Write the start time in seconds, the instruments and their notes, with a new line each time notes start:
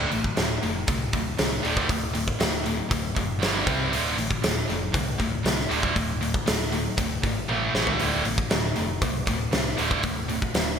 Already playing: distorted electric guitar D3
0.11 picked electric bass A1, distorted electric guitar D2 A2, open hi-hat
0.24 kick
0.37 picked electric bass D1, distorted electric guitar D2 A2, snare, open hi-hat
0.63 picked electric bass F1, distorted electric guitar D2 A2, open hi-hat
0.87 picked electric bass C2, distorted electric guitar D2 A2, kick, open hi-hat
1.13 picked electric bass D1, distorted electric guitar D2 A2, kick, open hi-hat
1.39 picked electric bass C2, distorted electric guitar D2 A2, snare, open hi-hat
1.63 picked electric bass D1, distorted electric guitar D2 A2 D3, open hi-hat
1.77 kick
1.89 picked electric bass D1, distorted electric guitar D2 A2, kick, open hi-hat
2.14 distorted electric guitar D2 A2, open hi-hat
2.28 kick
2.40 picked electric bass D1, distorted electric guitar D2 A2, snare, open hi-hat
2.66 distorted electric guitar D2 A2, open hi-hat
2.91 picked electric bass D1, distorted electric guitar D2 A2, kick, open hi-hat
3.16 picked electric bass F#1, distorted electric guitar D2 A2, kick, open hi-hat
3.42 picked electric bass G1, distorted electric guitar G2 D3 G3, snare, open hi-hat
3.67 picked electric bass C2, distorted electric guitar C3 G3 C4, kick, open hi-hat
3.92 picked electric bass D1, distorted electric guitar D2 A2 D3, open hi-hat
4.17 picked electric bass A1, distorted electric guitar D2 A2, open hi-hat
4.31 kick
4.43 picked electric bass D1, distorted electric guitar D2 A2, snare, open hi-hat
4.69 picked electric bass F1, distorted electric guitar D2 A2, open hi-hat
4.93 picked electric bass C2, distorted electric guitar D2 A2, kick, open hi-hat
5.18 picked electric bass D1, distorted electric guitar D2 A2, kick, open hi-hat
5.44 picked electric bass C2, distorted electric guitar D2 A2, snare, open hi-hat
5.60 snare
5.69 picked electric bass D1, distorted electric guitar D2 A2 D3, open hi-hat
5.83 kick
5.95 picked electric bass D1, distorted electric guitar D2 A2, kick, open hi-hat
6.21 distorted electric guitar D2 A2, open hi-hat
6.34 kick
6.46 picked electric bass D1, distorted electric guitar D2 A2, snare, open hi-hat
6.72 distorted electric guitar D2 A2, open hi-hat
6.97 picked electric bass D1, distorted electric guitar D2 A2, kick, open hi-hat
7.23 picked electric bass G#1, distorted electric guitar D2 A2, kick, open hi-hat
7.48 picked electric bass A1, distorted electric guitar A2 E3 A3, high tom
7.74 picked electric bass A1, distorted electric guitar A2 E3 A3, snare
7.87 floor tom
8.00 picked electric bass D1, distorted electric guitar D2 A2 D3, open hi-hat
8.25 picked electric bass A1, distorted electric guitar D2 A2, open hi-hat
8.38 kick
8.50 picked electric bass D1, distorted electric guitar D2 A2, snare, open hi-hat
8.76 picked electric bass F1, distorted electric guitar D2 A2, open hi-hat
9.02 picked electric bass C2, distorted electric guitar D2 A2, kick, open hi-hat
9.27 picked electric bass D1, distorted electric guitar D2 A2, kick, open hi-hat
9.53 picked electric bass C2, distorted electric guitar D2 A2, snare, open hi-hat
9.66 snare
9.77 picked electric bass D1, distorted electric guitar D2 A2 D3, open hi-hat
9.91 kick
10.03 picked electric bass D1, distorted electric guitar D2 A2, kick, open hi-hat
10.28 distorted electric guitar D2 A2, open hi-hat
10.42 kick
10.54 picked electric bass D1, distorted electric guitar D2 A2, snare, open hi-hat